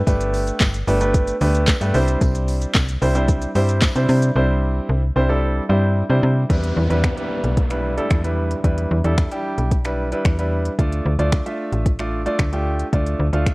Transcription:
0.07 G1 A3 B3 D4 G4 B4, kick, closed hi-hat, tambourine, shaker
0.21 closed hi-hat, shaker
0.34 open hi-hat, tambourine, shaker
0.47 closed hi-hat, shaker
0.60 G1, kick, snare, clap, closed hi-hat, tambourine, shaker
0.74 closed hi-hat, shaker
0.87 G1 A3 B3 D4 G4 B4, open hi-hat, shaker
1.01 A3 B3 D4 G4 B4, closed hi-hat, shaker
1.14 kick, closed hi-hat, shaker
1.27 closed hi-hat, shaker
1.41 D2 A3 B3 D4 G4 B4, open hi-hat, tambourine, shaker
1.55 closed hi-hat, shaker
1.67 kick, snare, clap, closed hi-hat, tambourine, shaker
1.81 G2 A3 B3 D4 G4 B4, closed hi-hat, shaker
1.94 C2 G3 C4 D4 E4 C5, open hi-hat, tambourine, shaker
2.08 closed hi-hat, shaker
2.21 C2, kick, closed hi-hat, tambourine, shaker
2.35 closed hi-hat, shaker
2.48 open hi-hat, tambourine, shaker
2.62 closed hi-hat, shaker
2.74 C2, kick, snare, clap, closed hi-hat, tambourine, shaker
2.89 closed hi-hat, shaker
3.02 C2 G3 C4 D4 E4 C5, open hi-hat, shaker
3.15 G3 C4 D4 E4 C5, closed hi-hat, shaker
3.28 kick, closed hi-hat, shaker
3.42 closed hi-hat, shaker
3.55 G2 G3 C4 D4 E4 C5, open hi-hat, tambourine, shaker
3.69 closed hi-hat, shaker
3.81 kick, snare, clap, closed hi-hat, tambourine, shaker
3.95 C3 G3 C4 D4 E4 C5, closed hi-hat, shaker
4.09 C3, open hi-hat, tambourine, shaker
4.22 closed hi-hat, shaker
4.35 C2 G3 C4 D4 E4 C5
4.89 C2
5.16 C2 G3 C4 D4 E4 C5
5.29 G3 C4 D4 E4 A4
5.69 G2 G3 C4 D4 E4 C5
6.09 C3 G3 C4 D4 E4 C5
6.23 C3
6.49 E2 G3 D4 E4 B4, kick, closed hi-hat, downlifter
6.64 closed hi-hat
6.77 E2
6.90 E2 G3 D4 E4 B4, closed hi-hat
7.04 finger snap, kick, closed hi-hat
7.17 G3 D4 E4 B4, closed hi-hat
7.44 B1, closed hi-hat
7.57 kick, closed hi-hat
7.70 G3 D4 E4 B4, finger snap, closed hi-hat
7.97 G3 D4 E4 A4, closed hi-hat
8.10 E2, finger snap, kick, closed hi-hat
8.24 G3 D4 E4 B4, closed hi-hat
8.51 closed hi-hat
8.64 E2 G3 D4 E4 B4, kick, closed hi-hat
8.78 closed hi-hat
8.91 E2
9.04 E2 G3 D4 E4 A4, closed hi-hat
9.18 finger snap, kick, closed hi-hat
9.31 G3 D4 E4 G4, closed hi-hat
9.58 B1, closed hi-hat
9.71 kick, closed hi-hat
9.85 G3 D4 E4 B4, finger snap, closed hi-hat
10.12 G3 D4 E4 B4, closed hi-hat
10.25 E2, finger snap, kick, closed hi-hat
10.39 G3 D4 E4 B4, closed hi-hat
10.65 closed hi-hat
10.78 D2 A3 D4 F4 D5, kick, closed hi-hat
10.92 closed hi-hat
11.06 D2
11.19 D2 A3 D4 F4 D5, closed hi-hat
11.32 finger snap, kick, closed hi-hat
11.46 A3 D4 F4 E5, closed hi-hat
11.72 A1, closed hi-hat
11.86 kick, closed hi-hat
11.99 A3 D4 F4 D5, finger snap, closed hi-hat
12.26 A3 D4 F4 D5, closed hi-hat
12.39 D2, finger snap, kick, closed hi-hat
12.53 A3 D4 F4 G4, closed hi-hat
12.79 closed hi-hat
12.93 D2 A3 D4 F4 D5, kick, closed hi-hat
13.06 closed hi-hat
13.20 D2
13.33 D2 A3 D4 F4 F5, closed hi-hat
13.47 finger snap, kick, closed hi-hat

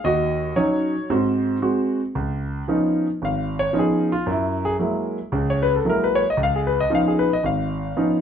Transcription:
0.04 D#2 F#4 D#5
0.56 F#3 C#4 D#4 C#5
1.10 G#2 C4 F#4 C5
1.62 G#3 C4 F#4
2.15 C#2
2.68 F3 B3 C#4 D#4
3.22 G#1 F5
3.59 C#5
3.73 F3 B3 C#4 D#4
3.79 G#4
4.12 F4
4.26 F#2
4.31 E4
4.65 G#4
4.79 F#3 G#3 A#3 E4
5.32 C#2 C#3
5.50 C#5
5.62 B4
5.76 A4
5.85 F#3 G#3 A#3 E4
5.89 A#4
6.04 B4
6.15 C#5
6.30 D#5
6.37 C#2
6.43 F5
6.56 G#4
6.67 B4
6.80 D#5
6.90 F3 B3 C#4 D#4
6.95 F5
7.08 G#4
7.19 B4
7.33 D#5
7.43 G#1 F5
7.97 F3 B3 C#4 D#4

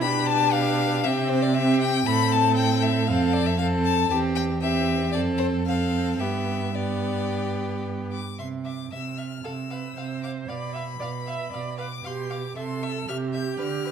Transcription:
0.01 B2 D4 G4 B5
0.27 A5
0.52 F5
1.04 C3 C4 G4 E5
1.28 C5
1.42 D5
1.55 C4 G4 E5
1.81 G5
2.06 A2 C4 A4 B5
2.32 A5
2.56 G5
2.82 E5
3.07 F2 C4 A4 F5
3.33 D5
3.46 E5
3.58 C4 A4 F5
3.84 A5
4.10 E2 C4 G4 A5
4.35 G5
4.61 C4 G4 E5
5.12 F2 C4 A4 D5
5.38 C5
5.66 C4 A4 F5
6.19 G2 B3 G4 E5
6.75 B3 G4 D5
8.12 D6
8.38 C3 E5 C6
8.65 E5 D6
8.92 C3 E5 E6
9.18 E5 F6
9.44 C3 A4 F5 E6
9.70 B4 F5
9.96 C3 C5 F5
10.23 F5 D6
10.49 B2 D5 F5 B5
10.74 E5 F5
11.00 B2 D5 F5
11.27 E5 F5
11.52 B2 D5 F5
11.78 B4 F5 D6
12.04 B2 G4 F5 C6
12.30 F5 D6
12.56 C3 A4 E5 C6
12.83 E5 E6
13.08 C3 G4 E5 F6
13.33 E5 G6
13.59 D3 B4 F6
13.85 B4

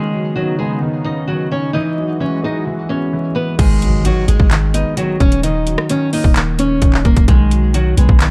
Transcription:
Already playing: C#3 D#3 G#3 B3 D#4 G#4
0.13 F#3
0.36 D#3 F#3 F#4
0.58 G#3 B3 G#4
0.82 D#3
1.04 C#4 D#4 D#5
1.28 D#3 F#3 F#4
1.51 C#4 C#5
1.73 E3 G#3 D#4 F#4 D#5
1.98 F#3
2.20 E3 C#4 C#5
2.43 G#3 D#4 D#5
2.67 E3
2.89 B3 C#4 C#5
3.13 E3
3.35 B3 B4
3.59 G#1 D#3 G#3 G#4, kick, closed hi-hat, crash, impact
3.82 F#3, closed hi-hat
4.04 D#3 F#3 F#4, closed hi-hat
4.28 G#1 G#3 G#4, closed hi-hat
4.40 G#1, kick
4.51 D#3, clap, closed hi-hat
4.74 B3 D#4 D#5, closed hi-hat
4.97 D#3 F#3 F#4, closed hi-hat
5.20 D#1 C#4 C#5, kick, closed hi-hat
5.32 closed hi-hat
5.43 D#3 D#4 D#5, closed hi-hat
5.66 F#3, closed hi-hat
5.78 cross-stick
5.90 D#3 C#4 C#5, closed hi-hat
6.13 A#3 D#4 D#5, open hi-hat
6.24 D#1, kick
6.36 D#3, clap, closed hi-hat
6.59 C#4 C#5, closed hi-hat
6.82 D#1 D#3, kick, closed hi-hat
6.94 clap
7.05 D#1 A#3 A#4, kick, closed hi-hat
7.17 D#1, kick, closed hi-hat
7.28 B1 D#3 G#3 G#4, kick, closed hi-hat
7.51 F#3, closed hi-hat
7.74 D#3 F#3 F#4, closed hi-hat
7.97 B1 G#3 B3 G#4, closed hi-hat
8.09 B1, kick
8.20 D#3, clap, closed hi-hat

